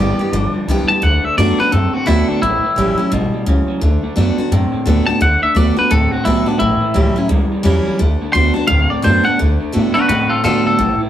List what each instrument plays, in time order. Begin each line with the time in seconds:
Already playing: upright bass G1, clean electric guitar G2 E3 D5, steel-string acoustic guitar G2 D3 G3
0.00 steel-string acoustic guitar B3 G4
0.19 clean electric guitar G2 E3, steel-string acoustic guitar B3 G4
0.32 upright bass G1, clean electric guitar G2 F3, steel-string acoustic guitar D3
0.53 clean electric guitar G2 F3, muted upright bass stroke
0.67 upright bass B1, clean electric guitar G2 E3, steel-string acoustic guitar D3 G3 B3 G4
0.87 clean electric guitar G2 E3 A5, steel-string acoustic guitar B3 G4, muted upright bass stroke
1.02 upright bass D2, steel-string acoustic guitar D3, clean electric guitar D3 A3 F#5
1.24 clean electric guitar D3 A3 E5, muted upright bass stroke
1.37 upright bass F#2, clean electric guitar D3 B3 D5, steel-string acoustic guitar D3 A3 D4 F#4
1.58 clean electric guitar D3 B3 B4, steel-string acoustic guitar D4 F#4, muted upright bass stroke
1.72 upright bass F#2, steel-string acoustic guitar A2, clean electric guitar D3 C4 A4
1.94 clean electric guitar D3 C4 F#4, muted upright bass stroke
2.06 upright bass D2, steel-string acoustic guitar D3 A3 D4 F#4, clean electric guitar D3 B3 E4
2.28 clean electric guitar D3 B3 D4
2.42 upright bass A1, clean electric guitar A2 E3 E4, steel-string acoustic guitar A2
2.63 clean electric guitar A2 E3, muted upright bass stroke
2.76 upright bass A1, clean electric guitar A2 F#3, steel-string acoustic guitar E3 G3 C#4 E4
2.98 clean electric guitar A2 F#3, steel-string acoustic guitar C#4 E4, muted upright bass stroke
3.12 upright bass A1, clean electric guitar A2 G3, steel-string acoustic guitar B2
3.33 clean electric guitar A2 G3, muted upright bass stroke
3.46 upright bass C#2, clean electric guitar A2 F#3, steel-string acoustic guitar C#3
3.68 clean electric guitar A2 F#3, muted upright bass stroke
3.81 upright bass D2, clean electric guitar D3 A3, steel-string acoustic guitar D3
4.03 clean electric guitar D3 A3
4.16 upright bass F#2, steel-string acoustic guitar D3 A3 D4 F#4, clean electric guitar D3 B3
4.37 clean electric guitar D3 B3, steel-string acoustic guitar D4 F#4, muted upright bass stroke
4.51 upright bass F#2, steel-string acoustic guitar A2, clean electric guitar D3 C4
4.72 clean electric guitar D3 C4, muted upright bass stroke
4.86 upright bass D2, steel-string acoustic guitar D3 A3 D4 F#4, clean electric guitar D3 B3
5.07 clean electric guitar D3 B3 A5, steel-string acoustic guitar D4 F#4
5.20 upright bass D2, clean electric guitar D3 A3 F#5, steel-string acoustic guitar D3
5.42 clean electric guitar D3 A3 E5, muted upright bass stroke
5.55 upright bass D2, steel-string acoustic guitar D3 A3 D4 F#4, clean electric guitar D3 B3 D5
5.77 clean electric guitar D3 B3 B4, steel-string acoustic guitar D4 F#4
5.90 upright bass D2, steel-string acoustic guitar A2, clean electric guitar D3 C4 A4
6.12 clean electric guitar D3 C4 F#4, muted upright bass stroke
6.25 upright bass B1, steel-string acoustic guitar D3 A3 D4 F#4, clean electric guitar D3 B3 E4
6.46 clean electric guitar D3 B3 D4, steel-string acoustic guitar D4 F#4, muted upright bass stroke
6.59 upright bass A1, steel-string acoustic guitar A2, clean electric guitar A2 E3 E4
6.81 clean electric guitar A2 E3, muted upright bass stroke
6.94 upright bass C#2, clean electric guitar A2 F#3, steel-string acoustic guitar E3 G3 C#4 E4
7.16 clean electric guitar A2 F#3, steel-string acoustic guitar C#4 E4, muted upright bass stroke
7.29 upright bass C#2, steel-string acoustic guitar E2, clean electric guitar A2 G3
7.52 clean electric guitar A2 G3, muted upright bass stroke
7.63 upright bass E2, clean electric guitar A2 F#3, steel-string acoustic guitar E3 G3 C#4 E4
7.87 clean electric guitar A2 F#3, muted upright bass stroke
7.99 upright bass D2, steel-string acoustic guitar D3, clean electric guitar D3 A3
8.21 clean electric guitar D3 A3, muted upright bass stroke
8.33 upright bass D2, steel-string acoustic guitar D3 A3 D4 F#4, clean electric guitar D3 B3 C6
8.54 clean electric guitar D3 B3 A5, steel-string acoustic guitar D4 F#4, muted upright bass stroke
8.67 upright bass D2, steel-string acoustic guitar A2, clean electric guitar D3 C4 F5
8.90 clean electric guitar D3 C4 D5, muted upright bass stroke
9.02 upright bass F#2, steel-string acoustic guitar D3 A3 D4 F#4, clean electric guitar D3 B3 C5
9.24 clean electric guitar D3 B3 F#5, steel-string acoustic guitar D4 F#4
9.28 muted upright bass stroke
9.39 upright bass D2, clean electric guitar D3 A3, steel-string acoustic guitar D3
9.60 clean electric guitar D3 A3, muted upright bass stroke
9.72 upright bass A2, steel-string acoustic guitar D3 A3 D4 F#4, clean electric guitar D3 B3
9.94 clean electric guitar D3 B3 F#4 B4, steel-string acoustic guitar D4 F#4, muted upright bass stroke
10.08 steel-string acoustic guitar A2, upright bass B2, clean electric guitar D3 C4 F#4 B4
10.30 clean electric guitar D3 C4 F4 A4, muted upright bass stroke
10.44 steel-string acoustic guitar D3 A3 D4 F#4, clean electric guitar D3 B3 F4 A4, upright bass D3
10.65 clean electric guitar D3 B3 A4, muted upright bass stroke
10.79 upright bass A1, steel-string acoustic guitar A2, clean electric guitar A2 E3
11.00 clean electric guitar A2 E3, muted upright bass stroke